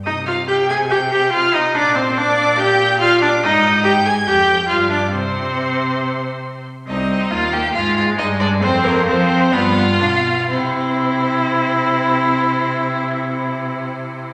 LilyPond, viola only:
\new Staff \with { instrumentName = "Viola" } { \time 4/4 \key g \phrygian \tempo 4 = 137 ees'8 f'8 g'8 aes'8 g'8 g'8 f'8 ees'8 | d'8 c'8 d'4 g'4 f'8 d'8 | ees'4 g'8 aes'8 g'4 f'8 d'8 | c'2.~ c'8 r8 |
c'4 bes4 aes2 | c'4 c'4 b8 b8 d'8 r8 | e'1~ | e'1 | }